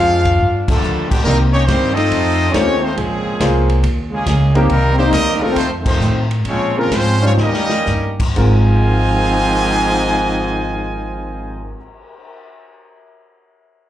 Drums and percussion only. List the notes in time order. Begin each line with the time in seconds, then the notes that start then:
0.25 kick, ride
0.68 kick, crash
0.83 hi-hat pedal
1.11 kick, crash
1.25 kick
1.68 kick, snare, hi-hat pedal, ride
1.97 ride
2.11 kick, ride
2.54 kick, snare, hi-hat pedal, ride
2.97 kick, ride
3.40 kick, snare, hi-hat pedal, ride
3.69 ride
3.83 kick, ride
4.26 kick, snare, hi-hat pedal, ride
4.55 ride
4.69 kick, ride
5.12 kick, snare, hi-hat pedal, ride
5.56 kick, ride
5.86 kick, crash
6.01 hi-hat pedal
6.31 ride
6.45 kick, ride
6.91 kick, snare, hi-hat pedal, ride
7.37 snare
7.54 snare
7.69 snare
7.86 snare, hi-hat pedal
8.20 kick, crash
8.36 kick, crash
8.71 cymbal swell